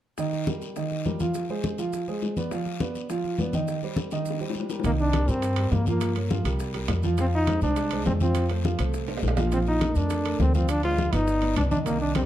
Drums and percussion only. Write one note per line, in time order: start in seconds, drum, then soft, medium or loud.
0.18 high bongo medium
0.18 high conga soft
0.18 long guiro medium
0.18 maracas medium
0.32 high bongo soft
0.32 high conga soft
0.32 maracas soft
0.47 high bongo medium
0.47 high conga medium
0.47 short guiro medium
0.47 maracas soft
0.62 high bongo soft
0.62 high conga soft
0.62 short guiro medium
0.62 maracas medium
0.76 high bongo medium
0.76 high conga soft
0.76 long guiro medium
0.76 maracas medium
0.91 high bongo soft
0.91 high conga soft
0.91 maracas soft
1.05 high bongo soft
1.05 low bongo medium
1.05 high conga medium
1.05 short guiro medium
1.05 maracas soft
1.20 high conga medium
1.20 short guiro medium
1.20 maracas medium
1.34 high bongo medium
1.34 long guiro medium
1.34 maracas medium
1.49 high bongo soft
1.49 high conga soft
1.49 maracas soft
1.63 high bongo medium
1.63 high conga medium
1.63 short guiro medium
1.63 maracas soft
1.78 high bongo soft
1.78 high conga soft
1.78 short guiro medium
1.78 maracas medium
1.93 high bongo medium
1.93 high conga soft
1.93 long guiro medium
1.93 maracas medium
2.08 high bongo soft
2.08 high conga soft
2.08 maracas soft
2.22 high bongo soft
2.22 low bongo medium
2.22 high conga soft
2.22 short guiro medium
2.22 maracas soft
2.37 high conga medium
2.37 short guiro medium
2.37 maracas medium
2.51 high bongo medium
2.51 high conga soft
2.51 long guiro medium
2.51 maracas medium
2.66 high bongo soft
2.66 high conga soft
2.66 maracas soft
2.80 high bongo medium
2.80 high conga medium
2.80 short guiro medium
2.80 maracas soft
2.95 high bongo soft
2.95 high conga soft
2.95 short guiro medium
2.95 maracas medium
3.10 high bongo medium
3.10 high conga soft
3.10 long guiro medium
3.10 maracas medium
3.24 high bongo soft
3.24 high conga soft
3.24 maracas soft
3.38 high bongo soft
3.38 low bongo medium
3.38 high conga medium
3.38 short guiro medium
3.38 maracas soft
3.53 high conga medium
3.53 short guiro medium
3.53 maracas medium
3.68 high bongo medium
3.68 high conga soft
3.68 long guiro medium
3.68 maracas medium
3.82 high bongo soft
3.82 high conga soft
3.82 maracas soft
3.96 high bongo medium
3.96 high conga medium
3.96 short guiro medium
3.96 maracas soft
4.11 high bongo medium
4.11 high conga soft
4.11 short guiro medium
4.11 maracas medium
4.25 high conga soft
4.25 long guiro medium
4.25 maracas medium
4.30 high bongo medium
4.40 high conga soft
4.40 maracas soft
4.50 low bongo medium
4.55 high conga soft
4.55 short guiro medium
4.55 maracas soft
4.60 low bongo medium
4.69 low bongo medium
4.69 short guiro medium
4.69 maracas medium
4.80 low bongo medium
4.84 high bongo medium
4.84 high conga soft
4.84 high timbale medium
4.84 long guiro medium
4.84 maracas medium
4.99 high bongo soft
4.99 high conga soft
4.99 maracas soft
5.13 high bongo soft
5.13 high conga medium
5.13 high timbale medium
5.13 short guiro medium
5.13 maracas soft
5.28 high bongo soft
5.28 high conga soft
5.28 short guiro medium
5.28 maracas medium
5.42 high bongo medium
5.42 high conga soft
5.42 high timbale medium
5.42 long guiro medium
5.42 maracas medium
5.56 high bongo soft
5.56 high conga soft
5.56 high timbale medium
5.56 maracas soft
5.72 high bongo soft
5.72 low bongo medium
5.72 high conga medium
5.72 low timbale medium
5.72 short guiro medium
5.72 maracas soft
5.86 high conga medium
5.86 short guiro medium
5.86 maracas medium
6.00 high bongo medium
6.00 high conga soft
6.00 high timbale medium
6.00 long guiro medium
6.00 maracas medium
6.16 high conga soft
6.16 high timbale medium
6.16 maracas soft
6.30 high bongo medium
6.30 high conga medium
6.30 short guiro medium
6.30 maracas soft
6.45 high conga soft
6.45 high timbale medium
6.45 short guiro medium
6.45 maracas medium
6.59 high bongo medium
6.59 high conga soft
6.59 long guiro medium
6.59 maracas medium
6.74 high bongo soft
6.74 high conga soft
6.74 high timbale medium
6.74 maracas soft
6.88 high bongo soft
6.88 low bongo medium
6.88 high conga soft
6.88 high timbale medium
6.88 low timbale medium
6.88 short guiro medium
6.88 maracas soft
7.03 high conga medium
7.03 short guiro medium
7.03 maracas medium
7.17 high bongo medium
7.17 high timbale medium
7.17 long guiro medium
7.17 maracas medium
7.32 high bongo soft
7.32 high conga soft
7.32 maracas soft
7.47 high bongo medium
7.47 high conga loud
7.47 high timbale medium
7.47 short guiro medium
7.47 maracas soft
7.61 high conga soft
7.61 short guiro medium
7.61 maracas medium
7.76 high bongo medium
7.76 high conga soft
7.76 high timbale medium
7.76 long guiro medium
7.76 maracas medium
7.91 high conga soft
7.91 high timbale medium
7.91 maracas soft
8.05 high bongo soft
8.05 low bongo medium
8.05 high conga medium
8.05 low timbale medium
8.05 short guiro medium
8.05 maracas soft
8.20 high conga medium
8.20 short guiro medium
8.20 maracas medium
8.35 high bongo medium
8.35 high conga soft
8.35 high timbale medium
8.35 long guiro medium
8.35 maracas medium
8.49 high bongo soft
8.49 high conga soft
8.49 high timbale medium
8.49 maracas soft
8.64 high bongo medium
8.64 high conga loud
8.64 short guiro medium
8.64 maracas soft
8.79 high bongo soft
8.79 high conga soft
8.79 high timbale medium
8.79 short guiro medium
8.79 maracas medium
8.94 high bongo medium
8.94 high conga soft
8.94 long guiro medium
8.94 maracas medium
9.08 high bongo soft
9.08 high conga soft
9.08 high timbale medium
9.08 maracas soft
9.17 low timbale medium
9.23 high bongo soft
9.23 low bongo medium
9.23 high conga soft
9.23 short guiro medium
9.23 maracas soft
9.28 low timbale medium
9.37 high conga medium
9.37 low timbale medium
9.37 short guiro medium
9.37 maracas medium
9.52 high bongo medium
9.52 high conga soft
9.52 high timbale medium
9.52 long guiro medium
9.52 maracas medium
9.66 high bongo soft
9.66 high conga soft
9.66 maracas soft
9.81 high bongo medium
9.81 high conga loud
9.81 high timbale medium
9.81 short guiro medium
9.81 maracas soft
9.95 high bongo soft
9.95 high conga soft
9.95 short guiro medium
9.95 maracas medium
10.10 high bongo medium
10.10 high conga soft
10.10 high timbale medium
10.10 long guiro medium
10.10 maracas medium
10.25 high bongo soft
10.25 high conga soft
10.25 high timbale medium
10.25 maracas soft
10.39 high bongo soft
10.39 low bongo medium
10.39 high conga medium
10.39 low timbale medium
10.39 short guiro medium
10.39 maracas soft
10.54 high conga medium
10.54 short guiro medium
10.54 maracas medium
10.69 high bongo medium
10.69 high timbale medium
10.69 long guiro medium
10.69 maracas medium
10.83 high bongo soft
10.83 high conga soft
10.83 high timbale medium
10.83 maracas soft
10.98 high bongo medium
10.98 high conga loud
10.98 short guiro medium
10.98 maracas soft
11.13 high conga soft
11.13 high timbale medium
11.13 short guiro medium
11.13 maracas medium
11.27 high bongo medium
11.27 high conga soft
11.27 long guiro medium
11.27 maracas medium
11.42 high conga soft
11.42 high timbale medium
11.42 maracas soft
11.56 high bongo soft
11.56 low bongo medium
11.56 high conga soft
11.56 high timbale medium
11.56 short guiro medium
11.56 maracas soft
11.71 high conga medium
11.71 short guiro medium
11.71 maracas medium
11.86 high bongo medium
11.86 high conga soft
11.86 high timbale medium
11.86 long guiro medium
11.86 maracas medium
12.01 high bongo soft
12.01 high conga soft
12.01 maracas soft
12.15 high bongo medium
12.15 high conga medium
12.15 high timbale medium
12.15 short guiro medium
12.15 maracas soft